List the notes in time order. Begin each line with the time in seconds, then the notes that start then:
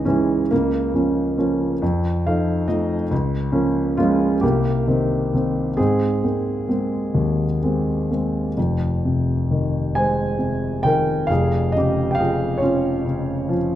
Already playing: C#2 E3 G#3 C#4 D#4
0.05 E3 G#3 C#4 E4
0.51 C#2 C#3 A#3
0.94 F3 A#3 C#4
1.38 F3 A#3 C#4
1.82 F2
2.26 F3 D#4 A4 F5
2.68 F3 A3 D#4 D#5
3.11 C#2
3.52 F3 A#3 C#4
3.97 F3 G#3 A#3 C#4 F4
4.41 C2 A#3 G4
4.87 D#3 A#3 C4
5.34 D#3 A#3 C4
5.77 G#2 C4 G#4
6.24 G#3 A#3 C4
6.69 G#3 A#3 C4
7.14 D#2
7.63 G#3 A#3 C4
8.10 G#3 A#3 C4
8.57 F1 F2
9.05 C3
9.51 D#3
9.95 G#3 C5 G#5
10.38 C3
10.83 D#3 G5
10.87 A#4
11.27 F1 F2 F5
11.31 G#4
11.72 C#3 D#5
11.78 G4
12.11 F5 G5
12.20 F3 G#4
12.58 C#5
12.62 C#4 F4
13.05 C#3
13.49 F3